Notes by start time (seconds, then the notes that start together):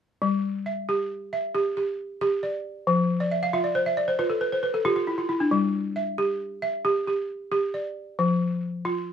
0.22 G3
0.66 E5
0.89 G4
1.33 E5
1.55 G4
1.77 G4
2.21 G4
2.43 D5
2.87 F3
3.20 D5
3.31 E5
3.43 F5
3.53 F4 E5
3.64 D5
3.75 C5
3.86 E5
3.97 D5
4.08 C5
4.19 F4 B4
4.30 A4
4.41 B4
4.52 C5
4.63 B4
4.74 A4
4.85 F4 G4
4.96 F4
5.07 E4
5.18 F4
5.29 E4
5.40 D4
5.51 G3
5.96 E5
6.18 G4
6.62 E5
6.85 G4
7.07 G4
7.52 G4
7.74 D5
8.19 F3
8.85 F4